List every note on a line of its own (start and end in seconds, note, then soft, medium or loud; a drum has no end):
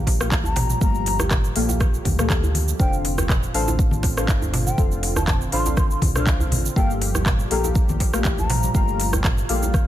0.00 0.33 A#1 medium
0.00 2.76 F3 medium
0.00 2.76 G3 medium
0.00 0.17 A#3 loud
0.00 0.17 G4 medium
0.00 0.80 G4 medium
0.00 0.17 A4 medium
0.00 0.17 F5 loud
0.07 kick medium
0.07 open hi-hat medium
0.07 djembe slap loud
0.20 0.79 A3 medium
0.20 0.79 A#3 medium
0.20 0.79 G4 medium
0.20 0.79 F5 loud
0.20 cross-stick loud
0.20 shaker medium
0.32 0.75 A1 medium
0.32 kick loud
0.32 clap loud
0.32 djembe tone medium
0.32 shaker medium
0.44 0.79 A#5 medium
0.44 djembe bass medium
0.44 shaker soft
0.56 mid tom medium
0.56 open hi-hat medium
0.56 djembe slap loud
0.70 mid tom medium
0.70 shaker medium
0.81 1.49 G1 loud
0.81 1.53 A3 medium
0.81 1.53 A#3 medium
0.81 1.53 G4 medium
0.81 2.78 G4 medium
0.81 1.53 F5 medium
0.81 1.20 A#5 loud
0.81 kick loud
0.81 shaker medium
0.95 shaker soft
1.06 open hi-hat medium
1.06 djembe slap medium
1.20 cross-stick loud
1.20 djembe bass medium
1.20 shaker medium
1.31 kick loud
1.31 cross-stick medium
1.31 clap loud
1.31 mid tom medium
1.31 high conga medium
1.31 shaker medium
1.44 shaker soft
1.56 1.99 A#1 medium
1.56 2.16 A#3 loud
1.56 2.16 G4 medium
1.56 2.16 A4 medium
1.56 2.16 F5 loud
1.56 open hi-hat medium
1.69 djembe tone loud
1.69 shaker medium
1.80 kick loud
1.80 cross-stick loud
1.80 high conga medium
1.80 shaker medium
1.94 shaker soft
2.05 2.73 D2 medium
2.05 kick medium
2.05 open hi-hat medium
2.05 high conga loud
2.05 low conga medium
2.19 2.77 A#3 medium
2.19 2.77 G4 medium
2.19 2.77 A4 medium
2.19 2.77 F5 loud
2.19 cross-stick loud
2.19 mid tom medium
2.19 shaker medium
2.30 kick loud
2.30 clap loud
2.30 high conga medium
2.30 shaker medium
2.44 djembe bass medium
2.44 shaker soft
2.55 open hi-hat medium
2.55 high conga medium
2.68 shaker medium
2.80 3.47 F1 loud
2.80 6.73 D3 medium
2.80 6.73 C4 medium
2.80 3.52 D4 medium
2.80 6.73 F4 medium
2.80 3.52 A4 medium
2.80 3.52 C5 medium
2.80 3.52 F5 medium
2.80 2.94 G5 medium
2.80 kick loud
2.80 shaker medium
2.93 shaker soft
3.05 open hi-hat medium
3.05 djembe slap medium
3.18 cross-stick loud
3.18 djembe bass medium
3.18 shaker medium
3.29 kick loud
3.29 cross-stick medium
3.29 clap medium
3.29 mid tom medium
3.29 shaker medium
3.43 shaker soft
3.54 4.30 A1 medium
3.54 4.14 D4 loud
3.54 4.14 A4 medium
3.54 4.14 C5 medium
3.54 4.14 F5 loud
3.54 3.69 A5 loud
3.54 open hi-hat medium
3.68 djembe tone loud
3.68 shaker medium
3.79 kick loud
3.79 shaker medium
3.91 high conga medium
3.91 shaker soft
4.03 kick medium
4.03 open hi-hat medium
4.03 djembe slap loud
4.17 4.76 D4 medium
4.17 4.76 A4 medium
4.17 4.76 C5 medium
4.17 4.76 F5 medium
4.17 cross-stick loud
4.17 shaker medium
4.28 4.71 G1 loud
4.28 kick loud
4.28 clap loud
4.28 djembe tone medium
4.28 shaker medium
4.42 djembe bass medium
4.42 shaker soft
4.54 mid tom medium
4.54 open hi-hat medium
4.54 djembe slap loud
4.66 4.79 G5 loud
4.66 mid tom medium
4.66 shaker medium
4.78 5.46 F1 loud
4.78 5.50 D4 medium
4.78 5.50 A4 medium
4.78 5.50 C5 medium
4.78 5.50 F5 medium
4.78 kick loud
4.78 shaker medium
4.92 shaker soft
5.03 open hi-hat medium
5.03 djembe slap medium
5.16 5.24 A5 medium
5.16 cross-stick medium
5.16 djembe bass medium
5.16 shaker medium
5.27 5.36 A5 medium
5.27 kick loud
5.27 cross-stick medium
5.27 clap medium
5.27 mid tom medium
5.27 high conga medium
5.27 shaker medium
5.41 shaker soft
5.52 5.96 A1 medium
5.52 6.12 D4 loud
5.52 6.12 A4 medium
5.52 6.12 C5 medium
5.52 6.12 F5 loud
5.52 5.67 C6 medium
5.52 open hi-hat medium
5.66 djembe tone loud
5.66 shaker medium
5.77 5.86 C6 medium
5.77 kick loud
5.77 cross-stick medium
5.77 high conga medium
5.77 shaker medium
5.91 5.98 C6 medium
5.91 shaker soft
6.02 6.53 C2 loud
6.02 kick medium
6.02 open hi-hat medium
6.02 high conga loud
6.02 low conga medium
6.16 6.74 D4 medium
6.16 6.74 A4 medium
6.16 6.74 C5 medium
6.16 6.74 F5 medium
6.16 cross-stick medium
6.16 mid tom medium
6.16 shaker medium
6.27 kick loud
6.27 clap loud
6.27 high conga medium
6.27 shaker medium
6.40 djembe bass medium
6.40 shaker soft
6.51 6.68 A1 medium
6.51 open hi-hat medium
6.51 high conga medium
6.51 low conga medium
6.66 shaker medium
6.76 7.44 G1 loud
6.76 9.87 F3 medium
6.76 9.87 G3 medium
6.76 7.48 A#3 medium
6.76 8.73 G4 medium
6.76 7.48 G4 medium
6.76 7.48 A4 medium
6.76 7.48 F5 medium
6.76 6.91 G5 medium
6.76 kick loud
6.76 shaker medium
6.90 shaker soft
7.01 open hi-hat medium
7.01 djembe slap medium
7.15 cross-stick medium
7.15 djembe bass medium
7.15 shaker medium
7.26 kick loud
7.26 cross-stick medium
7.26 clap loud
7.26 mid tom loud
7.26 shaker medium
7.39 shaker soft
7.51 8.27 A#1 medium
7.51 8.11 A#3 loud
7.51 8.11 G4 medium
7.51 8.11 A4 medium
7.51 8.11 F5 loud
7.51 7.66 A#5 medium
7.51 open hi-hat medium
7.64 djembe tone medium
7.64 shaker medium
7.75 kick loud
7.75 shaker medium
7.89 high conga medium
7.89 shaker soft
8.00 kick medium
8.00 open hi-hat medium
8.00 djembe slap loud
8.14 8.72 A3 medium
8.14 8.72 A#3 medium
8.14 8.72 G4 medium
8.14 8.72 F5 loud
8.14 cross-stick medium
8.14 shaker medium
8.25 8.68 A1 loud
8.25 kick loud
8.25 clap loud
8.25 djembe tone medium
8.25 shaker medium
8.38 8.73 A#5 loud
8.38 djembe bass medium
8.38 shaker soft
8.50 mid tom loud
8.50 open hi-hat medium
8.50 djembe slap loud
8.63 mid tom medium
8.63 shaker medium
8.74 9.42 G1 loud
8.74 9.47 A3 medium
8.74 9.47 A#3 medium
8.74 9.87 F4 medium
8.74 9.47 G4 medium
8.74 9.47 F5 medium
8.74 9.13 A#5 medium
8.74 kick loud
8.74 shaker medium
8.88 shaker soft
9.00 open hi-hat medium
9.00 djembe slap medium
9.13 cross-stick medium
9.13 djembe bass medium
9.13 shaker medium
9.24 kick loud
9.24 cross-stick medium
9.24 clap loud
9.24 mid tom loud
9.24 high conga medium
9.24 shaker medium
9.38 shaker soft
9.49 9.87 A#1 medium
9.49 9.87 A#3 loud
9.49 9.87 G4 medium
9.49 9.87 A4 medium
9.49 9.87 F5 loud
9.49 open hi-hat medium
9.63 djembe tone medium
9.63 shaker medium
9.74 kick loud
9.74 cross-stick medium
9.74 high conga medium
9.74 shaker medium